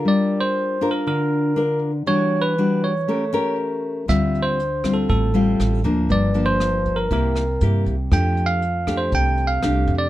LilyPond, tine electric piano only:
\new Staff \with { instrumentName = "Tine electric piano" } { \time 4/4 \key f \major \tempo 4 = 119 \tuplet 3/2 { d''4 c''8~ c''4 bes'8 } bes'4. r8 | \tuplet 3/2 { des''4 b'8~ } b'8 des''4. r4 | \tuplet 3/2 { e''4 c''8~ c''4 a'8 } a'4. r8 | \tuplet 3/2 { d''4 c''8~ c''4 bes'8 } bes'4. r8 |
\tuplet 3/2 { g''4 f''8~ f''4 c''8 g''4 f''8~ f''4 d''8 } | }